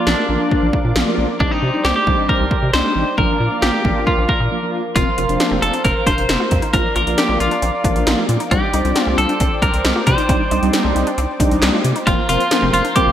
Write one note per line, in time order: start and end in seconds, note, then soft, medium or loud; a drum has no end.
0.00 0.15 F3 medium
0.00 0.15 A#3 medium
0.00 0.15 D4 medium
0.00 0.15 F4 medium
0.00 1.37 A#4 medium
0.00 1.38 D5 medium
0.00 1.38 F5 medium
0.00 3.14 D6 medium
0.07 0.15 A#1 loud
0.07 0.69 D4 medium
0.07 snare loud
0.29 0.37 A#1 loud
0.29 0.67 F3 medium
0.29 0.67 A#3 medium
0.29 0.67 D4 medium
0.29 0.67 F4 medium
0.51 kick medium
0.62 0.71 A#1 medium
0.73 kick medium
0.85 0.93 A#2 loud
0.96 1.04 A#1 loud
0.96 1.02 F3 medium
0.96 1.02 A#3 medium
0.96 1.02 D4 medium
0.96 1.02 F4 loud
0.96 snare loud
1.07 1.26 F3 medium
1.07 1.26 A#3 medium
1.07 1.26 D4 medium
1.07 1.26 F4 loud
1.18 1.26 A#1 loud
1.40 1.48 C2 loud
1.40 1.59 G3 medium
1.40 1.59 C4 medium
1.40 1.59 D4 medium
1.40 1.51 D4 medium
1.40 1.59 D#4 medium
1.40 3.16 C5 medium
1.40 3.16 D5 medium
1.40 3.16 G5 medium
1.40 kick loud
1.51 1.86 D#4 medium
1.62 1.71 C3 medium
1.74 1.93 G3 medium
1.74 1.93 C4 medium
1.74 1.93 D4 medium
1.74 1.93 D#4 medium
1.85 1.93 C2 loud
1.85 1.95 G4 medium
1.85 snare loud
1.96 2.29 G4 medium
2.07 2.15 C2 loud
2.07 2.45 G3 medium
2.07 2.45 C4 medium
2.07 2.45 D4 medium
2.07 2.45 D#4 medium
2.07 kick medium
2.29 2.70 A#4 loud
2.29 kick medium
2.40 2.48 C2 medium
2.51 kick loud
2.62 2.71 C3 medium
2.73 2.82 C2 loud
2.73 2.80 G3 medium
2.73 2.80 C4 medium
2.73 2.80 D4 medium
2.73 2.80 D#4 medium
2.73 3.17 C5 loud
2.73 snare loud
2.85 3.04 G3 medium
2.85 3.04 C4 medium
2.85 3.04 D4 medium
2.85 3.04 D#4 medium
2.96 3.04 A1 loud
3.18 3.26 A#1 loud
3.18 3.37 F3 medium
3.18 3.37 A#3 medium
3.18 3.37 D4 medium
3.18 3.37 F4 medium
3.18 3.64 A#4 loud
3.18 4.94 A#4 medium
3.18 4.94 D5 medium
3.18 4.94 F5 medium
3.18 4.94 D6 medium
3.18 kick loud
3.40 3.48 A#2 medium
3.51 3.70 F3 medium
3.51 3.70 A#3 medium
3.51 3.70 D4 medium
3.51 3.70 F4 medium
3.62 3.71 A#1 loud
3.62 4.04 G4 medium
3.62 snare loud
3.85 3.93 A#1 medium
3.85 4.23 F3 medium
3.85 4.23 A#3 medium
3.85 4.23 D4 medium
3.85 4.23 F4 medium
3.85 kick medium
4.07 4.30 F4 medium
4.07 kick medium
4.18 4.26 A#1 loud
4.29 4.70 A#4 medium
4.29 kick medium
4.40 4.48 A#2 medium
4.51 4.58 F3 medium
4.51 4.58 A#3 medium
4.51 4.58 D4 medium
4.51 4.58 F4 medium
4.62 4.82 F3 medium
4.62 4.82 A#3 medium
4.62 4.82 D4 medium
4.62 4.82 F4 medium
4.96 5.04 F1 loud
4.96 5.08 F3 medium
4.96 5.08 A#3 medium
4.96 5.10 C4 medium
4.96 5.09 C4 medium
4.96 5.58 F4 medium
4.96 5.08 F4 medium
4.96 8.48 A#4 medium
4.96 6.72 C5 medium
4.96 6.72 F5 medium
4.96 6.72 C6 medium
4.96 kick loud
4.96 closed hi-hat medium
5.18 5.26 F1 medium
5.18 5.24 F3 medium
5.18 5.24 A#3 medium
5.18 5.24 C4 medium
5.18 5.24 F4 medium
5.18 5.32 F4 medium
5.18 closed hi-hat medium
5.29 5.37 F1 loud
5.29 5.80 F3 medium
5.29 5.80 A#3 medium
5.29 5.80 C4 medium
5.29 5.80 D4 medium
5.29 closed hi-hat soft
5.40 5.47 D4 medium
5.40 snare loud
5.40 closed hi-hat medium
5.51 5.60 F1 loud
5.51 5.66 C4 medium
5.62 5.71 F1 loud
5.62 5.84 A4 medium
5.62 closed hi-hat medium
5.74 5.81 D4 medium
5.74 closed hi-hat soft
5.85 5.93 F1 loud
5.85 5.99 C4 medium
5.85 6.06 A#4 loud
5.85 kick medium
5.85 closed hi-hat medium
6.06 6.15 F1 loud
6.06 6.21 D4 medium
6.06 6.73 C5 loud
6.06 kick medium
6.06 closed hi-hat medium
6.18 6.26 F1 loud
6.18 closed hi-hat soft
6.29 6.37 F1 loud
6.29 6.36 D#4 medium
6.29 snare loud
6.29 closed hi-hat medium
6.40 6.55 F4 medium
6.51 6.60 F2 loud
6.51 kick medium
6.51 closed hi-hat medium
6.62 6.70 D#4 medium
6.62 closed hi-hat medium
6.73 6.82 A#1 loud
6.73 6.86 F3 medium
6.73 6.86 A#3 medium
6.73 6.88 D4 loud
6.73 6.86 D4 medium
6.73 6.86 F4 medium
6.73 6.95 A#4 loud
6.73 8.50 D5 medium
6.73 8.50 F5 medium
6.73 12.03 D6 medium
6.73 kick loud
6.73 closed hi-hat medium
6.96 7.04 A#1 loud
6.96 7.02 F3 medium
6.96 7.02 A#3 medium
6.96 7.02 D4 medium
6.96 7.10 F4 medium
6.96 7.02 F4 medium
6.96 7.19 A#4 medium
6.96 closed hi-hat medium
7.07 7.15 A#1 loud
7.07 7.52 F3 medium
7.07 7.52 A#3 medium
7.07 7.52 D4 medium
7.07 7.52 F4 medium
7.07 closed hi-hat soft
7.18 7.25 D4 medium
7.18 7.40 G4 medium
7.18 snare loud
7.18 closed hi-hat medium
7.29 7.37 A#1 loud
7.29 7.44 C4 medium
7.40 7.48 A#1 loud
7.40 8.25 F4 medium
7.40 closed hi-hat medium
7.51 7.58 D4 medium
7.51 closed hi-hat soft
7.62 7.71 A#1 loud
7.62 7.77 C4 medium
7.62 closed hi-hat medium
7.84 7.93 A#1 loud
7.84 8.23 F3 medium
7.84 8.23 A#3 medium
7.84 7.99 D4 medium
7.84 8.23 D4 medium
7.84 8.23 F4 medium
7.84 kick medium
7.84 closed hi-hat medium
7.96 8.04 A#1 loud
7.96 closed hi-hat soft
8.07 8.15 A#1 loud
8.07 8.14 D#4 medium
8.07 snare loud
8.07 closed hi-hat medium
8.18 8.32 F4 medium
8.29 8.37 A#2 loud
8.29 closed hi-hat medium
8.40 8.47 D#4 medium
8.40 closed hi-hat medium
8.51 8.60 C2 loud
8.51 8.64 G3 medium
8.51 8.66 C4 medium
8.51 8.64 C4 medium
8.51 8.64 D4 medium
8.51 8.64 D#4 medium
8.51 9.03 G4 medium
8.51 12.03 C5 medium
8.51 12.03 D5 medium
8.51 12.03 G5 medium
8.51 kick loud
8.51 closed hi-hat medium
8.73 8.82 C2 loud
8.73 8.80 G3 medium
8.73 8.80 C4 medium
8.73 8.80 D4 medium
8.73 8.88 D#4 medium
8.73 8.80 D#4 medium
8.73 closed hi-hat medium
8.85 8.93 C2 loud
8.85 9.36 G3 medium
8.85 9.36 C4 medium
8.85 9.36 D4 medium
8.85 9.36 F4 medium
8.85 closed hi-hat soft
8.96 9.03 D4 medium
8.96 snare loud
8.96 closed hi-hat medium
9.03 9.15 C2 medium
9.03 9.21 C4 medium
9.03 9.20 F4 medium
9.18 9.26 C2 loud
9.18 9.62 A4 loud
9.18 closed hi-hat medium
9.29 9.36 D4 medium
9.29 closed hi-hat soft
9.40 9.49 C2 loud
9.40 9.55 C4 medium
9.40 kick medium
9.40 closed hi-hat medium
9.62 9.70 C2 loud
9.62 9.77 D4 medium
9.62 10.06 A#4 loud
9.62 kick medium
9.62 closed hi-hat medium
9.74 9.82 C2 medium
9.74 closed hi-hat medium
9.85 9.93 C2 medium
9.85 9.92 D#4 medium
9.85 snare loud
9.85 closed hi-hat medium
9.96 10.10 F4 medium
10.07 10.15 C3 loud
10.07 10.69 C5 medium
10.07 kick medium
10.07 closed hi-hat medium
10.18 10.25 D#4 medium
10.18 closed hi-hat medium
10.29 10.37 C2 loud
10.29 10.42 G3 medium
10.29 10.44 C4 loud
10.29 10.42 C4 medium
10.29 10.42 D4 medium
10.29 10.42 D#4 medium
10.29 kick loud
10.29 closed hi-hat medium
10.51 10.60 C2 loud
10.51 10.58 G3 medium
10.51 10.58 C4 medium
10.51 10.58 D4 medium
10.51 10.58 D#4 medium
10.51 10.66 D#4 medium
10.51 closed hi-hat medium
10.62 10.71 C2 loud
10.62 11.07 G3 medium
10.62 11.07 C4 medium
10.62 11.07 D4 medium
10.62 11.07 D#4 loud
10.62 closed hi-hat soft
10.73 10.81 D4 medium
10.73 snare loud
10.73 closed hi-hat medium
10.85 10.93 C2 loud
10.85 10.99 C4 medium
10.96 11.04 C2 loud
10.96 closed hi-hat medium
11.07 11.14 D4 medium
11.07 closed hi-hat medium
11.18 11.26 C2 loud
11.18 11.32 C4 medium
11.18 closed hi-hat medium
11.40 11.48 C2 loud
11.40 11.79 G3 medium
11.40 11.79 C4 medium
11.40 11.55 D4 medium
11.40 11.79 D4 medium
11.40 11.79 D#4 loud
11.40 kick medium
11.40 closed hi-hat medium
11.51 11.60 C2 medium
11.51 closed hi-hat soft
11.62 11.71 C2 loud
11.62 11.70 D#4 medium
11.62 snare loud
11.62 clap medium
11.62 closed hi-hat medium
11.74 11.88 F4 medium
11.84 11.93 C3 loud
11.84 closed hi-hat medium
11.96 12.03 D#4 medium
11.96 closed hi-hat medium
12.07 12.15 F1 loud
12.07 12.20 F3 medium
12.07 12.20 A#3 medium
12.07 12.21 C4 loud
12.07 12.20 C4 medium
12.07 12.28 F4 loud
12.07 12.20 F4 medium
12.07 12.20 A#4 medium
12.07 13.12 A#4 medium
12.07 13.12 C5 medium
12.07 13.12 F5 medium
12.07 13.12 C6 medium
12.07 kick loud
12.07 closed hi-hat medium
12.29 12.37 F1 loud
12.29 12.42 F3 medium
12.29 12.42 A#3 medium
12.29 12.42 C4 medium
12.29 12.44 F4 medium
12.29 12.72 F4 loud
12.29 12.42 F4 medium
12.29 12.42 C5 medium
12.29 closed hi-hat medium
12.40 closed hi-hat medium
12.51 12.77 F3 medium
12.51 12.77 A#3 medium
12.51 12.77 C4 medium
12.51 12.58 D4 medium
12.51 12.77 F4 medium
12.51 12.77 A#4 medium
12.51 snare loud
12.51 closed hi-hat medium
12.62 12.71 F1 loud
12.62 12.77 C4 medium
12.73 12.82 F1 loud
12.73 12.95 F4 loud
12.73 closed hi-hat medium
12.85 12.92 D4 medium
12.85 closed hi-hat medium
12.96 13.08 F3 medium
12.96 13.08 A#3 medium
12.96 13.08 C4 medium
12.96 13.10 C4 medium
12.96 13.08 F4 medium
12.96 13.12 G4 loud
12.96 13.08 A#4 medium
12.96 kick medium
12.96 closed hi-hat medium
13.07 13.12 F1 loud